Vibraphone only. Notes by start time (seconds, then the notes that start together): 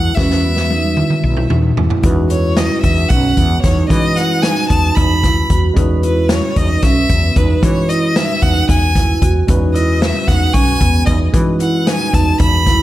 Already playing: E4
0.18 C#4
0.44 B3
0.71 D#4
0.98 E4
1.51 D#4
1.77 E4
2.04 D#4
2.31 E4
2.85 D#4
3.12 C#4
3.38 B3
3.64 D#4
4.17 E4
4.44 D#4
4.70 D#4
5.23 E4
5.50 F#4
5.76 D#4
6.03 E4
6.57 D#4
6.83 C#4
7.10 B3
7.36 D#4
7.89 E4
8.17 D#4
8.43 D#4
8.96 E4
9.22 F#4
9.49 D#4
9.74 E4
10.28 D#4
10.54 C#4
10.80 B3
11.07 D#4
11.60 E4
11.86 D#4
12.13 D#4
12.66 E4